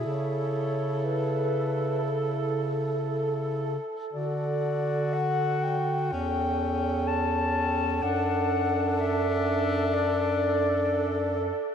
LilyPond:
<<
  \new Staff \with { instrumentName = "Clarinet" } { \time 4/4 \key a \major \tempo 4 = 61 cis''4 b'4 a'4. r8 | d''4 fis''8 g''4. a''4 | fis''4 e''4 d''4. r8 | }
  \new Staff \with { instrumentName = "Alto saxophone" } { \time 4/4 \key a \major a'1~ | a'4. r8 a'2~ | a'1 | }
  \new Staff \with { instrumentName = "Tenor saxophone" } { \time 4/4 \key a \major e'2.~ e'8 r8 | fis'2 cis'2 | d'2.~ d'8 r8 | }
  \new Staff \with { instrumentName = "Bass clarinet" } { \clef bass \time 4/4 \key a \major cis2.~ cis8 r8 | d2 e,2 | fis,2.~ fis,8 r8 | }
>>